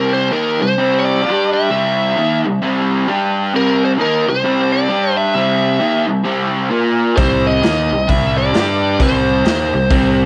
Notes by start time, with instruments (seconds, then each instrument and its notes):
Already playing: overdriven electric guitar C3 G3 C4, lead electric guitar A#4
0.14 lead electric guitar C5
0.31 overdriven electric guitar D#3 A#3 D#4, lead electric guitar A#4
0.61 overdriven electric guitar C3 G3, lead electric guitar C5
0.78 overdriven electric guitar C3 G3 C4
0.99 lead electric guitar C#5
1.05 lead electric guitar D5
1.23 overdriven electric guitar G3 D4 G4
1.54 lead electric guitar E5
1.70 overdriven electric guitar C3 G3 C4
2.17 overdriven electric guitar D#3 A#3 D#4
2.45 overdriven electric guitar C3 G3
2.62 overdriven electric guitar C3 G3 C4
3.07 overdriven electric guitar G3 D4 G4
3.53 overdriven electric guitar C3 G3 C4, lead electric guitar A#4
3.85 lead electric guitar C5
3.98 overdriven electric guitar D#3 A#3 D#4, lead electric guitar A#4
4.28 overdriven electric guitar C3 G3, lead electric guitar C5
4.44 overdriven electric guitar C3 G3 C4
4.72 lead electric guitar D5
4.89 overdriven electric guitar G3 D4 G4
5.17 lead electric guitar E5
5.35 overdriven electric guitar C3 G3 C4
5.80 overdriven electric guitar D#3 A#3 D#4
6.08 overdriven electric guitar C3 G3
6.25 overdriven electric guitar C3 G3 C4
6.70 overdriven electric guitar A#3 F4 A#4
7.16 picked electric bass C2, overdriven electric guitar C3 G3 C4, lead electric guitar C5, kick, open hi-hat
7.47 lead electric guitar D#5
7.63 picked electric bass D#2, overdriven electric guitar D#3 A#3 D#4, snare, open hi-hat
7.91 picked electric bass C2, overdriven electric guitar C3 G3
8.07 picked electric bass C2, overdriven electric guitar C3 G3 C4, lead electric guitar E5, kick, open hi-hat
8.38 lead electric guitar D5
8.54 picked electric bass G2, overdriven electric guitar G3 D4 G4, snare, open hi-hat
9.00 picked electric bass C2, overdriven electric guitar C3 G3 C4, lead electric guitar C5, kick, open hi-hat
9.45 picked electric bass D#2, overdriven electric guitar D#3 A#3 D#4, snare, open hi-hat
9.74 picked electric bass C2, overdriven electric guitar C3 G3
9.90 picked electric bass C2, overdriven electric guitar C3 G3 C4, kick, open hi-hat